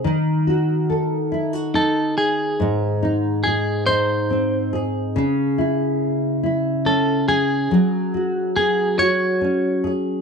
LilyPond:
<<
  \new Staff \with { instrumentName = "Clean electric guitar" } { \time 6/8 \key cis \minor \tempo 4. = 47 r2 a'8 gis'8~ | gis'4 gis'8 bis'4 r8 | r2 a'8 gis'8~ | gis'4 gis'8 cis''4 r8 | }
  \new Staff \with { instrumentName = "Nylon-string guitar" } { \time 6/8 \key cis \minor dis8 fis'8 a'8 e'16 fis'16 dis'4 | gis,8 dis'8 gis'8 dis'8 bis8 gis'8 | cis8 e'4 e'8 cis'8 gis'8 | fis8 fis'8 gis'8 fis'8 cis'8 gis'8 | }
>>